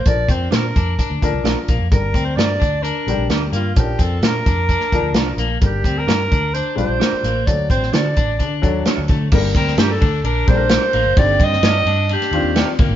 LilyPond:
<<
  \new Staff \with { instrumentName = "Alto saxophone" } { \time 4/4 \key g \minor \tempo 4 = 130 d''8 c''8 bes'4. r4. | bes'8. c''16 d''4 bes'4 r8 f'8 | g'8 a'8 bes'2~ bes'8 r8 | g'8. bes'4~ bes'16 c''8 c''4. |
d''8 c''8 d''4. r4. | r8 bes'8 g'16 a'8. bes'8 c''4. | d''8 ees''4. g'4. r8 | }
  \new Staff \with { instrumentName = "Clean electric guitar" } { \time 4/4 \key g \minor r4 <d' f' bes'>16 r4. r16 <d' f' bes'>16 r8. | r4 <d' g' bes'>16 r4. r16 <d' g' bes'>16 r8. | r4 <d' f' bes'>16 r4. r16 <d' f' bes'>16 r8. | r4 <d' g' bes'>16 r4. r16 <d' g' bes'>16 r8. |
r4 <d' fis' a'>16 r4. r16 <d' fis' a'>16 r8. | r4 <d' g' bes'>16 r4. r16 <d' g' bes'>16 r8. | r4 <ees' g' d''>16 r4. r16 <ees' g' d''>16 r8. | }
  \new Staff \with { instrumentName = "Upright piano" } { \time 4/4 \key g \minor <f d' bes'>4. r4 <f d' bes'>4 r8 | <g d' bes'>4. r4 <g d' g'>4 r8 | <f cis' d' bes'>4. r4 <f d' bes'>4 r8 | <g d' bes'>4. r4 <g d' f'>4 r8 |
<fis d' a'>4. r4 <fis d' a'>4 r8 | <g bes d' bes'>4. r4 <g bes d' a' bes'>4 r8 | <d ees c' g'>4. r4 <ees c' d' f'>4 r8 | }
  \new Staff \with { instrumentName = "Clean electric guitar" } { \time 4/4 \key g \minor r8 c'8 r8 d'8 d'4 r8 bes8 | r8 c'8 r8 d'8 d'4 r8 bes8 | r8 c'8 r8 d'8 d'4 r8 bes8 | r8 c'8 r8 d'8 d'4 r8 bes8 |
r8 c'8 r8 d'8 d'4 r8 a8 | r8 c'8 r8 d'8 d'4 r8 bes8 | r8 c'8 r8 d'8 d'4 r8 bes8 | }
  \new Staff \with { instrumentName = "Fingered electric bass" } { \clef bass \time 4/4 \key g \minor bes,,8 f,8 bes,8 f,8 r16 d,16 d,16 c,16 bes,,16 r16 bes,,16 f,16 | g,,8 d,8 g,8 d,8. r16 bes,,16 bes,,16 d,8 g,8 | bes,,8 f,8 bes,8 f,8. r16 d,16 d,16 c,8 bes,,8 | g,,8 d,8 g,8 d,8. r16 bes,,16 bes,,16 r8 a,,8 |
d,8 a,,8 d8 a,,8 d8 ees,8 r16 d,16 d8 | g,,8 d,8 g,8 d,8 bes,,8 bes,,8. r16 a,,16 fis,,16 | g,,8 g,8 g,8 g,8. r16 ees,16 ees,8 r16 d,16 aes,,16 | }
  \new DrumStaff \with { instrumentName = "Drums" } \drummode { \time 4/4 <hh bd>8 <hh bd>8 <hh sn>8 <hh bd>8 <hh bd>8 <hh bd>8 <hh sn>8 <hh bd>8 | <hh bd>8 <hh bd>8 <hh sn>8 <hh bd>8 hh8 hh8 <hh sn>8 hh8 | <hh bd>8 <hh bd>8 <hh sn>8 <hh bd>8 <hh bd>16 sn16 <hh bd>8 <hh sn>8 hh8 | <hh bd>8 <hh bd>8 <hh sn>8 <hh bd>8 hh8 hh8 <hh sn>8 hh8 |
<hh bd>8 <hh bd>16 sn16 <hh sn>8 <hh bd>8 <hh bd>8 <hh bd>8 <hh sn>8 <hh bd>8 | <cymc bd>8 <bd cymr>16 sn16 <cymr sn>8 <bd cymr>8 cymr8 <bd cymr>8 <cymr sn>8 cymr8 | <bd cymr>8 <bd cymr>16 sn16 <cymr sn>8 cymr8 cymr16 <cymr sn>16 cymr8 <cymr sn>8 <bd cymr>8 | }
>>